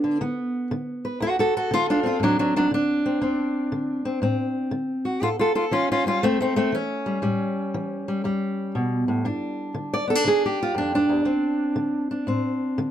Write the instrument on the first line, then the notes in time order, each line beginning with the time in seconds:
steel-string acoustic guitar
Already playing: B3 D4
0.04 D3
0.21 D3 B3
0.71 D3
1.05 B4
1.20 D2 F#4 A4
1.39 F#4 A4
1.57 F#4 A4
1.71 D3 F4
1.90 D4 F4
2.03 C4 F4
2.20 A2 F#3
2.24 D4
2.39 F#3 D4
2.56 F#3 D4
2.71 D3 D4
3.06 C4
3.21 D2 C4
3.72 D3
4.05 C4
4.22 A2 C4
4.71 D3
5.05 F#4
5.22 A2 F4 A4
5.39 F4 A4
5.55 F4 A4
5.71 E3 C#4 F4
5.92 C#4 F4
6.06 G3 C#4 F4
6.23 E2 A3 C4
6.41 A3 C4
6.56 A3 C4
6.72 E3 C#4
7.06 G3
7.22 A2 G3
7.74 E3
8.08 G3
8.24 E2 G3
8.75 B2
9.08 A2
9.25 G2 D4
9.74 D3
9.94 D5
10.07 B3 A4
10.15 D4
10.25 D3 G#4
10.46 G4
10.63 F4
10.75 F2 D4
10.95 D4
11.09 E2
11.25 D2 C4
11.76 D3
12.11 D4
12.27 A2 C4
12.78 D3